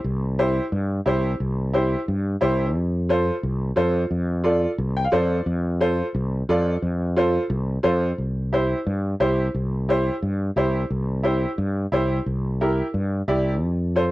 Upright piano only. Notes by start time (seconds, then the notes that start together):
0.39 E4 G4 C5
1.06 E4 G4 C5
1.73 E4 G4 C5
2.41 E4 G4 C5
3.09 F4 A4 C5
3.76 F4 A4 C5
4.44 F4 A4 D5
4.97 G5
5.05 F5
5.12 F4 A4 C5 D5
5.81 F4 A4 C5
6.49 F4 A4 D5
7.17 F4 A4 C5
7.83 F4 A4 C5
8.52 E4 G4 C5
9.20 E4 G4 C5
9.89 E4 G4 C5
10.57 E4 G4 C5
11.24 E4 G4 C5
11.92 E4 G4 C5
12.61 E4 G4 A#4
13.28 E4 G4 D5
13.95 F4 A4 C5